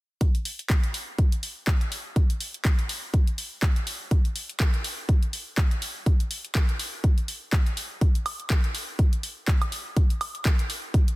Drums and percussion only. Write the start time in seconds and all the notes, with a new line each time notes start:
0.21 kick, closed hi-hat
0.35 closed hi-hat
0.45 open hi-hat
0.59 closed hi-hat
0.70 kick, clap, closed hi-hat
0.84 closed hi-hat
0.94 open hi-hat
1.19 kick, closed hi-hat
1.32 closed hi-hat
1.43 open hi-hat
1.67 kick, clap, closed hi-hat
1.81 closed hi-hat
1.92 open hi-hat
2.16 kick, closed hi-hat
2.30 closed hi-hat
2.40 open hi-hat
2.54 closed hi-hat
2.65 kick, clap, closed hi-hat
2.79 closed hi-hat
2.89 open hi-hat
3.14 kick, closed hi-hat
3.27 closed hi-hat
3.38 open hi-hat
3.62 kick, clap, closed hi-hat
3.76 closed hi-hat
3.87 open hi-hat
4.11 kick, closed hi-hat
4.25 closed hi-hat
4.36 open hi-hat
4.49 closed hi-hat
4.60 kick, clap, closed hi-hat
4.74 closed hi-hat
4.84 open hi-hat
5.09 kick, closed hi-hat
5.23 closed hi-hat
5.33 open hi-hat
5.58 kick, clap, closed hi-hat
5.71 closed hi-hat
5.82 open hi-hat
6.06 kick, closed hi-hat
6.20 closed hi-hat
6.31 open hi-hat
6.45 closed hi-hat
6.55 kick, clap, closed hi-hat
6.69 closed hi-hat
6.79 open hi-hat
7.04 kick, closed hi-hat
7.18 closed hi-hat
7.28 open hi-hat
7.53 kick, clap, closed hi-hat
7.66 closed hi-hat
7.77 open hi-hat
8.01 kick, closed hi-hat
8.15 closed hi-hat
8.26 open hi-hat, high woodblock
8.40 closed hi-hat
8.50 kick, clap, closed hi-hat
8.64 closed hi-hat
8.75 open hi-hat
8.99 kick, closed hi-hat
9.13 closed hi-hat
9.23 open hi-hat
9.48 kick, clap, closed hi-hat
9.62 closed hi-hat, high woodblock
9.72 open hi-hat
9.97 kick, closed hi-hat
10.10 closed hi-hat
10.21 open hi-hat, high woodblock
10.35 closed hi-hat
10.45 kick, clap, closed hi-hat
10.59 closed hi-hat
10.70 open hi-hat
10.94 kick, closed hi-hat
11.08 closed hi-hat